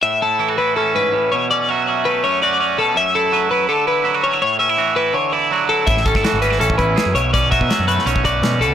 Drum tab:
HH |----------------|----------------|----------------|----------------|
SD |----------------|----------------|----------------|----------------|
BD |----------------|----------------|----------------|----------------|

HH |x-x-x-x-x-x-x-x-|x-x-x-x-x-x-x-x-|
SD |-o-oo--o----o---|----o--o----o---|
BD |o-oo-----oo-----|o-oo-----oo-----|